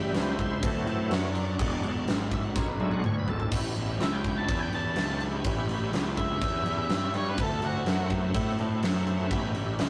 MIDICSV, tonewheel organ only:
0, 0, Header, 1, 2, 480
1, 0, Start_track
1, 0, Tempo, 481928
1, 1593, Time_signature, 4, 2, 24, 8
1, 9854, End_track
2, 0, Start_track
2, 0, Title_t, "Tonewheel organ"
2, 0, Program_c, 0, 16
2, 0, Note_on_c, 0, 49, 58
2, 0, Note_on_c, 0, 55, 47
2, 0, Note_on_c, 0, 59, 62
2, 0, Note_on_c, 0, 67, 80
2, 0, Note_on_c, 0, 76, 95
2, 143, Note_off_c, 0, 67, 0
2, 154, Note_off_c, 0, 76, 0
2, 158, Note_on_c, 0, 64, 94
2, 171, Note_on_c, 0, 72, 113
2, 357, Note_off_c, 0, 49, 0
2, 359, Note_off_c, 0, 59, 0
2, 361, Note_off_c, 0, 55, 0
2, 379, Note_off_c, 0, 64, 0
2, 386, Note_off_c, 0, 72, 0
2, 395, Note_on_c, 0, 64, 89
2, 398, Note_on_c, 0, 72, 105
2, 617, Note_off_c, 0, 64, 0
2, 618, Note_on_c, 0, 52, 60
2, 622, Note_on_c, 0, 54, 56
2, 629, Note_off_c, 0, 72, 0
2, 629, Note_on_c, 0, 60, 86
2, 640, Note_on_c, 0, 69, 97
2, 868, Note_off_c, 0, 60, 0
2, 869, Note_off_c, 0, 69, 0
2, 880, Note_on_c, 0, 60, 88
2, 886, Note_on_c, 0, 69, 93
2, 1100, Note_off_c, 0, 60, 0
2, 1106, Note_on_c, 0, 66, 96
2, 1112, Note_off_c, 0, 69, 0
2, 1114, Note_on_c, 0, 74, 106
2, 1309, Note_off_c, 0, 52, 0
2, 1311, Note_off_c, 0, 54, 0
2, 1592, Note_on_c, 0, 56, 54
2, 1596, Note_on_c, 0, 54, 58
2, 1601, Note_on_c, 0, 62, 62
2, 1911, Note_off_c, 0, 56, 0
2, 1914, Note_off_c, 0, 54, 0
2, 1916, Note_off_c, 0, 62, 0
2, 2029, Note_off_c, 0, 66, 0
2, 2044, Note_off_c, 0, 74, 0
2, 2319, Note_on_c, 0, 76, 107
2, 2427, Note_off_c, 0, 76, 0
2, 2432, Note_on_c, 0, 78, 93
2, 2544, Note_off_c, 0, 78, 0
2, 2561, Note_on_c, 0, 73, 110
2, 2668, Note_off_c, 0, 73, 0
2, 2671, Note_on_c, 0, 71, 94
2, 2783, Note_off_c, 0, 71, 0
2, 2786, Note_on_c, 0, 54, 52
2, 2788, Note_on_c, 0, 56, 50
2, 2798, Note_on_c, 0, 62, 58
2, 2799, Note_on_c, 0, 76, 93
2, 2907, Note_off_c, 0, 76, 0
2, 2911, Note_on_c, 0, 78, 107
2, 3004, Note_off_c, 0, 54, 0
2, 3006, Note_off_c, 0, 56, 0
2, 3011, Note_off_c, 0, 62, 0
2, 3023, Note_off_c, 0, 78, 0
2, 3043, Note_on_c, 0, 73, 93
2, 3149, Note_off_c, 0, 73, 0
2, 3165, Note_on_c, 0, 71, 109
2, 3271, Note_off_c, 0, 71, 0
2, 3279, Note_on_c, 0, 69, 113
2, 3507, Note_on_c, 0, 59, 93
2, 3508, Note_off_c, 0, 69, 0
2, 3514, Note_on_c, 0, 61, 79
2, 3524, Note_on_c, 0, 64, 78
2, 3525, Note_on_c, 0, 67, 93
2, 3721, Note_off_c, 0, 59, 0
2, 3725, Note_off_c, 0, 61, 0
2, 3730, Note_off_c, 0, 64, 0
2, 3730, Note_off_c, 0, 67, 0
2, 3758, Note_on_c, 0, 59, 78
2, 3767, Note_on_c, 0, 61, 77
2, 3769, Note_on_c, 0, 64, 82
2, 3787, Note_on_c, 0, 67, 94
2, 3967, Note_off_c, 0, 59, 0
2, 3971, Note_off_c, 0, 61, 0
2, 3972, Note_off_c, 0, 64, 0
2, 3982, Note_off_c, 0, 67, 0
2, 4000, Note_on_c, 0, 59, 78
2, 4008, Note_on_c, 0, 61, 62
2, 4012, Note_on_c, 0, 64, 67
2, 4019, Note_on_c, 0, 67, 79
2, 4208, Note_off_c, 0, 59, 0
2, 4212, Note_off_c, 0, 61, 0
2, 4214, Note_off_c, 0, 64, 0
2, 4218, Note_off_c, 0, 67, 0
2, 4242, Note_on_c, 0, 59, 75
2, 4251, Note_on_c, 0, 61, 69
2, 4254, Note_on_c, 0, 67, 81
2, 4257, Note_on_c, 0, 64, 66
2, 4449, Note_off_c, 0, 59, 0
2, 4453, Note_off_c, 0, 61, 0
2, 4455, Note_off_c, 0, 67, 0
2, 4457, Note_off_c, 0, 64, 0
2, 4472, Note_on_c, 0, 61, 92
2, 4473, Note_on_c, 0, 59, 99
2, 4485, Note_on_c, 0, 64, 87
2, 4492, Note_on_c, 0, 67, 99
2, 4684, Note_off_c, 0, 61, 0
2, 4685, Note_off_c, 0, 59, 0
2, 4691, Note_off_c, 0, 64, 0
2, 4694, Note_off_c, 0, 67, 0
2, 4716, Note_on_c, 0, 59, 73
2, 4725, Note_on_c, 0, 61, 65
2, 4731, Note_on_c, 0, 64, 68
2, 4736, Note_on_c, 0, 67, 79
2, 4926, Note_off_c, 0, 59, 0
2, 4930, Note_off_c, 0, 61, 0
2, 4933, Note_off_c, 0, 64, 0
2, 4936, Note_off_c, 0, 67, 0
2, 4965, Note_on_c, 0, 59, 73
2, 4970, Note_on_c, 0, 61, 69
2, 4978, Note_on_c, 0, 64, 71
2, 4985, Note_on_c, 0, 67, 89
2, 5171, Note_off_c, 0, 59, 0
2, 5173, Note_off_c, 0, 61, 0
2, 5177, Note_off_c, 0, 64, 0
2, 5181, Note_off_c, 0, 67, 0
2, 5197, Note_on_c, 0, 59, 70
2, 5200, Note_on_c, 0, 61, 66
2, 5205, Note_on_c, 0, 64, 67
2, 5213, Note_on_c, 0, 67, 79
2, 5407, Note_off_c, 0, 59, 0
2, 5408, Note_off_c, 0, 61, 0
2, 5411, Note_off_c, 0, 64, 0
2, 5415, Note_off_c, 0, 67, 0
2, 5437, Note_on_c, 0, 59, 104
2, 5441, Note_on_c, 0, 61, 94
2, 5448, Note_on_c, 0, 67, 123
2, 5450, Note_on_c, 0, 64, 95
2, 5647, Note_off_c, 0, 59, 0
2, 5649, Note_off_c, 0, 61, 0
2, 5653, Note_off_c, 0, 64, 0
2, 5653, Note_off_c, 0, 67, 0
2, 5676, Note_on_c, 0, 59, 89
2, 5687, Note_on_c, 0, 61, 75
2, 5688, Note_on_c, 0, 64, 74
2, 5696, Note_on_c, 0, 67, 92
2, 5887, Note_off_c, 0, 59, 0
2, 5892, Note_off_c, 0, 61, 0
2, 5893, Note_off_c, 0, 64, 0
2, 5897, Note_off_c, 0, 67, 0
2, 5914, Note_on_c, 0, 59, 85
2, 5922, Note_on_c, 0, 64, 81
2, 5925, Note_on_c, 0, 61, 82
2, 5935, Note_on_c, 0, 67, 105
2, 6126, Note_off_c, 0, 59, 0
2, 6130, Note_off_c, 0, 64, 0
2, 6131, Note_off_c, 0, 61, 0
2, 6136, Note_off_c, 0, 67, 0
2, 6144, Note_on_c, 0, 61, 66
2, 6149, Note_on_c, 0, 59, 75
2, 6152, Note_on_c, 0, 64, 75
2, 6160, Note_on_c, 0, 67, 80
2, 6361, Note_off_c, 0, 61, 0
2, 6363, Note_off_c, 0, 59, 0
2, 6365, Note_off_c, 0, 64, 0
2, 6369, Note_off_c, 0, 67, 0
2, 6403, Note_on_c, 0, 61, 96
2, 6404, Note_on_c, 0, 59, 98
2, 6406, Note_on_c, 0, 64, 93
2, 6416, Note_on_c, 0, 67, 109
2, 6610, Note_off_c, 0, 61, 0
2, 6611, Note_off_c, 0, 59, 0
2, 6612, Note_off_c, 0, 64, 0
2, 6617, Note_off_c, 0, 67, 0
2, 6632, Note_on_c, 0, 59, 71
2, 6638, Note_on_c, 0, 61, 68
2, 6640, Note_on_c, 0, 64, 66
2, 6644, Note_on_c, 0, 67, 82
2, 6845, Note_off_c, 0, 59, 0
2, 6848, Note_off_c, 0, 61, 0
2, 6849, Note_off_c, 0, 64, 0
2, 6851, Note_off_c, 0, 67, 0
2, 6873, Note_on_c, 0, 59, 93
2, 6877, Note_on_c, 0, 61, 85
2, 6883, Note_on_c, 0, 64, 82
2, 6891, Note_on_c, 0, 67, 95
2, 7085, Note_off_c, 0, 59, 0
2, 7088, Note_off_c, 0, 61, 0
2, 7090, Note_off_c, 0, 64, 0
2, 7095, Note_off_c, 0, 67, 0
2, 7111, Note_on_c, 0, 59, 76
2, 7111, Note_on_c, 0, 61, 73
2, 7115, Note_on_c, 0, 64, 71
2, 7119, Note_on_c, 0, 67, 77
2, 7325, Note_off_c, 0, 59, 0
2, 7325, Note_off_c, 0, 61, 0
2, 7327, Note_off_c, 0, 64, 0
2, 7329, Note_off_c, 0, 67, 0
2, 7352, Note_on_c, 0, 57, 91
2, 7360, Note_on_c, 0, 60, 80
2, 7368, Note_on_c, 0, 64, 80
2, 7371, Note_on_c, 0, 66, 98
2, 7565, Note_off_c, 0, 57, 0
2, 7569, Note_off_c, 0, 60, 0
2, 7573, Note_off_c, 0, 64, 0
2, 7575, Note_off_c, 0, 66, 0
2, 7585, Note_on_c, 0, 57, 78
2, 7591, Note_on_c, 0, 60, 71
2, 7593, Note_on_c, 0, 64, 65
2, 7599, Note_on_c, 0, 66, 80
2, 7802, Note_off_c, 0, 57, 0
2, 7805, Note_off_c, 0, 60, 0
2, 7806, Note_off_c, 0, 64, 0
2, 7809, Note_off_c, 0, 66, 0
2, 7835, Note_on_c, 0, 57, 78
2, 7843, Note_on_c, 0, 60, 70
2, 7843, Note_on_c, 0, 64, 70
2, 7852, Note_on_c, 0, 66, 81
2, 8047, Note_off_c, 0, 57, 0
2, 8051, Note_off_c, 0, 60, 0
2, 8051, Note_off_c, 0, 64, 0
2, 8055, Note_off_c, 0, 66, 0
2, 8067, Note_on_c, 0, 57, 80
2, 8074, Note_on_c, 0, 64, 69
2, 8075, Note_on_c, 0, 60, 69
2, 8084, Note_on_c, 0, 66, 84
2, 8283, Note_off_c, 0, 57, 0
2, 8287, Note_off_c, 0, 60, 0
2, 8287, Note_off_c, 0, 64, 0
2, 8291, Note_off_c, 0, 66, 0
2, 8302, Note_on_c, 0, 57, 123
2, 8313, Note_on_c, 0, 60, 109
2, 8314, Note_on_c, 0, 64, 117
2, 8331, Note_on_c, 0, 66, 127
2, 8521, Note_off_c, 0, 57, 0
2, 8526, Note_off_c, 0, 60, 0
2, 8526, Note_off_c, 0, 64, 0
2, 8535, Note_off_c, 0, 66, 0
2, 8546, Note_on_c, 0, 57, 87
2, 8555, Note_on_c, 0, 60, 81
2, 8571, Note_on_c, 0, 64, 82
2, 8573, Note_on_c, 0, 66, 101
2, 8763, Note_off_c, 0, 57, 0
2, 8767, Note_off_c, 0, 60, 0
2, 8775, Note_off_c, 0, 64, 0
2, 8777, Note_off_c, 0, 66, 0
2, 8797, Note_on_c, 0, 57, 95
2, 8806, Note_on_c, 0, 60, 85
2, 8809, Note_on_c, 0, 64, 88
2, 8819, Note_on_c, 0, 66, 99
2, 9009, Note_off_c, 0, 57, 0
2, 9013, Note_off_c, 0, 60, 0
2, 9014, Note_off_c, 0, 64, 0
2, 9019, Note_off_c, 0, 66, 0
2, 9021, Note_on_c, 0, 57, 88
2, 9027, Note_on_c, 0, 60, 80
2, 9035, Note_on_c, 0, 64, 85
2, 9045, Note_on_c, 0, 66, 98
2, 9240, Note_off_c, 0, 57, 0
2, 9240, Note_off_c, 0, 64, 0
2, 9243, Note_on_c, 0, 59, 113
2, 9244, Note_off_c, 0, 60, 0
2, 9245, Note_on_c, 0, 61, 101
2, 9252, Note_off_c, 0, 66, 0
2, 9252, Note_on_c, 0, 64, 99
2, 9264, Note_on_c, 0, 67, 110
2, 9470, Note_off_c, 0, 59, 0
2, 9473, Note_off_c, 0, 61, 0
2, 9476, Note_off_c, 0, 64, 0
2, 9482, Note_off_c, 0, 67, 0
2, 9482, Note_on_c, 0, 59, 86
2, 9489, Note_on_c, 0, 61, 80
2, 9493, Note_on_c, 0, 64, 84
2, 9506, Note_on_c, 0, 67, 96
2, 9711, Note_off_c, 0, 59, 0
2, 9715, Note_off_c, 0, 61, 0
2, 9717, Note_off_c, 0, 64, 0
2, 9723, Note_off_c, 0, 67, 0
2, 9742, Note_on_c, 0, 59, 96
2, 9745, Note_on_c, 0, 61, 87
2, 9752, Note_on_c, 0, 64, 83
2, 9759, Note_on_c, 0, 67, 96
2, 9854, Note_off_c, 0, 59, 0
2, 9854, Note_off_c, 0, 61, 0
2, 9854, Note_off_c, 0, 64, 0
2, 9854, Note_off_c, 0, 67, 0
2, 9854, End_track
0, 0, End_of_file